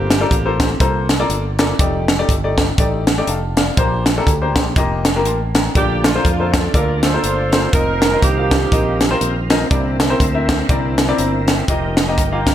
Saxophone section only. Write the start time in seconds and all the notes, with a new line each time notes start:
Already playing: A#3 C4 G4
5.76 D4 G4
6.05 A3 D4 F4
6.54 A4
6.75 D4 F4 A#4
7.03 F4 A4 C5
7.73 D#4 A#4
8.23 A#3 D#4 G4